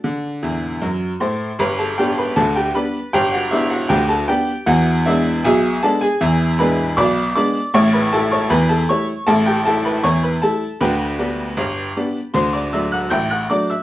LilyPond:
<<
  \new Staff \with { instrumentName = "Honky-tonk piano" } { \time 2/4 \key g \major \tempo 4 = 78 <a' d''>4. <c'' c'''>8 | <b' b''>16 <a' a''>16 <g' g''>16 <b' b''>16 <a' a''>16 <g' g''>16 <b' b''>8 | <g' g''>16 <fis' fis''>16 <e' e''>16 <fis' fis''>16 <g' g''>16 <a' a''>16 <g' g''>8 | <fis' fis''>8 <e' e''>8 <gis' e'' gis''>8 <a' a''>16 <gis' gis''>16~ |
<gis' gis''>8 <b' b''>8 <d'' b'' d'''>8 <d'' d'''>8 | <cis'' cis'''>16 <b' b''>16 <a' a''>16 <cis'' cis'''>16 <b' b''>16 <a' a''>16 <cis'' cis'''>8 | <a' a''>16 <g' g''>16 <a' a''>16 <b' b''>16 <cis'' cis'''>16 <b' b''>16 <a' a''>8 | <b' g'' b''>2 |
<c'' c'''>16 <d'' d'''>16 <e'' e'''>16 <fis'' fis'''>16 <g'' g'''>16 <fis'' fis'''>16 <d'' d'''>16 <e'' e'''>16 | }
  \new Staff \with { instrumentName = "Honky-tonk piano" } { \clef bass \time 2/4 \key g \major d8 <e, e>8 <fis, fis>8 <a, a>8 | <g,, g,>8 <g b d'>8 <d, d>8 <g b d'>8 | <g,, g,>8 <g b d'>8 <d, d>8 <g b d'>8 | <e, e>8 <gis b d'>8 <b,, b,>8 <gis b d'>8 |
<e, e>8 <gis b d'>8 <b,, b,>8 <gis b d'>8 | <a,, a,>8 <g a e'>8 <e, e>8 <g a e'>8 | <a,, a,>8 <g a e'>8 <e, e>8 <g a e'>8 | <d, d>8 <g b d'>8 <g,, g,>8 <g b d'>8 |
<d, d>8 <fis a d'>8 <a,, a,>8 <fis a d'>8 | }
>>